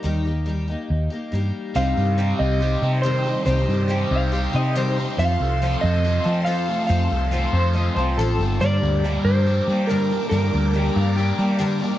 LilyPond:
<<
  \new Staff \with { instrumentName = "Clean electric guitar" } { \time 4/4 \key c \dorian \tempo 4 = 140 r1 | r1 | r4. f''4 ees''8 c''8 r8 | r1 |
r4. c''8 ees''8 c''8 a'8. r16 | r1 | r4. f''8 g''4 r4 | }
  \new Staff \with { instrumentName = "Clean electric guitar" } { \time 4/4 \key c \dorian bes'2. r4 | f''4. ees''4. c''4 | c''2. r4 | f''4. ees''4. f''4 |
f''2. r4 | d''4. c''4. bes'4 | bes'2. r4 | }
  \new Staff \with { instrumentName = "String section" } { \time 4/4 \key c \dorian << { r1 | c'''1~ | c'''1~ | c'''1~ |
c'''1 | d'''1~ | d'''1 | } \\ { r1 | <g' c'' ees''>1~ | <g' c'' ees''>1 | <a' c'' f''>1~ |
<a' c'' f''>1 | <bes' d'' g''>1~ | <bes' d'' g''>1 | } >> }
  \new Staff \with { instrumentName = "Twelve-string acoustic guitar" } { \time 4/4 \key c \dorian <ees g bes ees' g'>8 <bes ees' g'>8 <g bes ees' g'>8 <bes ees' g'>4 <bes ees' g'>8 <g bes ees' g'>4 | <c g c' ees' g'>4 <c g c' ees' g'>4 <g c' ees' g'>8 <c' ees' g'>8 <c g c' ees' g'>8 <c' ees' g'>8 | <c g c' ees' g'>4 <c g c' ees' g'>4 <g c' ees' g'>8 <c' ees' g'>8 <c g c' ees' g'>8 <c' ees' g'>8 | <f c' f' a'>4 <f c' f' a'>4 <f c' f' a'>8 <c' f' a'>8 <f c' f' a'>8 <c' f' a'>8 |
<f c' f' a'>4 <f c' f' a'>4 <f c' f' a'>8 <c' f' a'>8 <f c' f' a'>8 <c' f' a'>8 | <g, d g bes d' bes'>4 <g, d g bes d' bes'>4 <g bes d' bes'>8 <g bes d' bes'>8 <g, d g bes d' bes'>8 <g bes d' bes'>8 | <g, d g bes d' bes'>4 <g, d g bes d' bes'>4 <g bes d' bes'>8 <g bes d' bes'>8 <g, d g bes d' bes'>8 <g bes d' bes'>8 | }
  \new Staff \with { instrumentName = "Overdriven electric guitar" } { \time 4/4 \key c \dorian r1 | c8 g8 g'8 c'8 g'8 c'8 ees8 g8 | c8 g8 g'8 c'8 g'8 c'8 ees8 g8 | f,8 a8 f'8 c'8 f'8 c'8 f8 a8 |
f,8 a8 f'8 c'8 f'8 c'8 f8 a8 | g,8 bes8 g'8 d'8 g'8 d'8 g8 bes8 | g,8 bes8 g'8 d'8 g'8 d'8 g8 bes8 | }
  \new Staff \with { instrumentName = "Fingered electric bass" } { \clef bass \time 4/4 \key c \dorian ees,2 ees,8 r8 g,8 r8 | c,8 g,4 c,4 c4. | c,8 g,4 c,4 c4. | f,8 c,4 f,4 f4. |
f,8 c,4 f,4 c,8 a,,8 g,,8 | g,8 d,4 g,4 g4. | g,8 d,4 g,4 g4. | }
>>